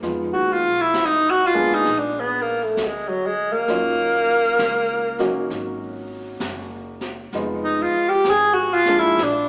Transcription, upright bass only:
0.02 0.34 F2 medium
0.34 0.64 D#2 soft
0.65 0.92 B1 medium
0.94 1.83 D#2 medium
1.86 2.74 A#1 medium
2.77 3.65 D2 medium
3.68 4.56 D#2 medium
4.59 5.47 C#2 medium
5.50 6.39 G#1 medium
6.41 7.30 F#1 medium
7.34 7.89 F1 medium
7.95 muted upright bass stroke soft
8.26 9.15 G#1 medium
9.19 9.49 A#1 medium

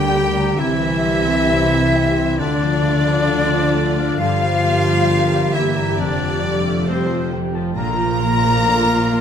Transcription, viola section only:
0.00 0.12 G3 medium
0.00 2.35 G4 medium
0.13 0.35 A#3 medium
0.36 0.58 G3 medium
0.58 0.79 C3 medium
0.81 1.03 E3 medium
1.03 1.26 G3 medium
1.26 1.48 C4 medium
1.50 1.72 G3 medium
1.72 1.94 E3 medium
1.95 2.17 C3 medium
2.17 2.39 E3 medium
2.40 2.60 D3 medium
2.40 4.15 F4 medium
2.62 2.84 F3 medium
2.84 3.07 A3 medium
3.07 3.29 F3 medium
3.29 3.52 D3 medium
3.52 3.74 F3 medium
3.74 3.97 A3 medium
3.97 4.19 F3 medium
4.20 4.40 D3 medium
4.20 7.73 G4 medium
4.41 4.63 G3 medium
4.64 4.86 A#3 medium
4.86 5.08 G3 medium
5.09 5.31 D3 medium
5.31 5.53 G3 medium
5.53 5.75 A#3 medium
5.76 5.98 G3 medium
5.98 6.18 C3 medium
6.20 6.42 F3 medium
6.43 6.65 G3 medium
6.65 6.87 A3 medium
6.87 7.10 G3 medium
7.10 7.32 F3 medium
7.32 7.54 C3 medium
7.54 7.76 F3 medium
7.75 7.97 D3 medium
7.75 9.21 F4 medium
7.98 8.21 F3 medium
8.20 8.43 A#3 medium
8.43 8.65 F3 medium
8.65 8.88 D3 medium
8.88 9.10 F3 medium
9.11 9.21 A#3 medium

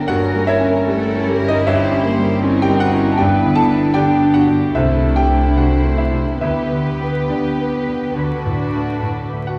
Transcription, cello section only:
0.00 0.88 A#4 medium
0.89 1.28 A4 medium
1.29 1.67 A#4 medium
1.68 2.41 G4 medium
2.44 3.18 E4 medium
3.20 3.93 E4 medium
3.96 6.43 D4 medium
6.43 9.43 B4 medium

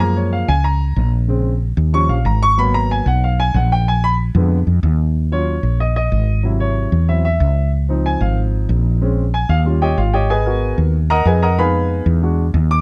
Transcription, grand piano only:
0.00 0.45 F3 medium
0.00 0.46 G#3 medium
0.00 0.46 A#3 medium
0.00 0.16 A#5 loud
0.16 0.32 C#5 medium
0.33 0.48 F5 medium
0.48 0.64 G#5 loud
0.64 1.09 A#5 loud
1.28 1.50 C#3 medium
1.28 1.50 G#3 medium
1.28 1.51 C4 medium
1.93 2.15 F3 medium
1.93 2.15 G3 medium
1.93 2.15 C#4 medium
1.93 2.09 C#6 loud
2.09 2.25 F5 medium
2.26 2.42 A#5 medium
2.43 2.58 C#6 loud
2.58 3.04 F#3 medium
2.58 3.04 A#3 medium
2.58 3.04 B3 medium
2.58 2.74 B5 loud
2.74 2.90 A#5 loud
2.91 3.06 G#5 medium
3.07 3.23 F#5 medium
3.24 3.39 F5 medium
3.40 3.55 G#5 loud
3.56 3.71 F#5 medium
3.72 3.87 G5 loud
3.88 4.03 G#5 loud
4.04 4.13 B5 loud
4.35 4.57 D3 medium
4.35 4.57 G#3 soft
4.35 4.57 B3 medium
5.32 5.53 F#3 medium
5.32 5.53 C#4 soft
5.32 5.54 F4 medium
5.32 5.77 C#5 medium
5.80 5.95 D#5 medium
5.96 6.41 D#5 medium
6.43 6.90 C3 medium
6.43 6.90 F#3 medium
6.43 6.91 E4 medium
6.60 7.05 C#5 medium
7.08 7.23 F#3 medium
7.08 7.23 C4 soft
7.08 7.23 E4 medium
7.08 7.23 E5 medium
7.25 7.70 E5 medium
7.89 8.97 F3 medium
7.89 8.98 C4 medium
7.89 8.98 D#4 medium
8.06 8.21 G#5 medium
8.21 8.37 F5 medium
9.01 9.23 G#3 medium
9.01 9.23 C4 medium
9.01 9.23 C#4 medium
9.34 9.49 G#5 medium
9.50 9.59 F5 loud
9.65 9.87 G3 medium
9.65 9.87 C#4 medium
9.65 9.87 F4 medium
9.82 9.98 G4 medium
9.82 9.98 C#5 medium
9.82 9.98 D#5 medium
9.82 9.97 G5 medium
9.98 10.14 F4 medium
9.98 10.13 F5 medium
10.13 10.30 G4 medium
10.13 10.30 C#5 medium
10.13 10.29 D#5 medium
10.13 10.29 G5 medium
10.30 10.75 G#4 medium
10.30 10.75 B4 medium
10.30 10.75 D#5 medium
10.30 10.75 G#5 medium
10.46 10.92 B3 medium
10.46 10.92 F#4 medium
10.46 10.92 A#4 medium
11.10 11.26 A#4 medium
11.10 11.26 D#5 medium
11.10 11.26 F#5 medium
11.10 11.26 A#5 loud
11.27 11.42 G#4 medium
11.27 11.42 B4 medium
11.27 11.42 D#5 medium
11.27 11.42 G#5 medium
11.43 11.58 A#4 medium
11.43 11.58 D#5 medium
11.43 11.58 F#5 medium
11.43 11.58 A#5 loud
11.58 12.19 G#3 medium
11.58 12.19 B3 medium
11.58 12.20 D#4 medium
11.58 12.04 B4 medium
11.58 12.04 F5 medium
11.58 12.04 G#5 medium
11.58 12.03 B5 medium
12.22 12.44 G#3 medium
12.22 12.44 D4 soft
12.22 12.44 F#4 medium
12.71 12.81 D6 loud

